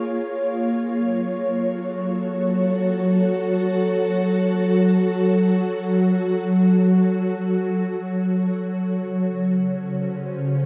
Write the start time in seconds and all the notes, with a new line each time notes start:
Already playing: A#3 F4 G#4 C#5
0.71 F#3
1.31 A4
1.55 F#4
8.97 C#3
9.64 C#4 C5
10.05 F4